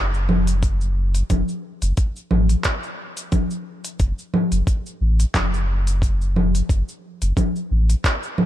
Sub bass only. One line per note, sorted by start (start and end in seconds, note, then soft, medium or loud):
0.00 1.22 F#1 loud
1.30 1.43 F#1 medium
1.82 1.92 F#1 medium
2.31 2.55 A1 medium
3.99 4.12 F#1 loud
4.52 4.62 F#1 medium
5.01 5.25 A1 medium
5.35 6.62 F#1 loud
6.70 6.82 F#1 loud
7.22 7.32 F#1 medium
7.71 7.95 A1 medium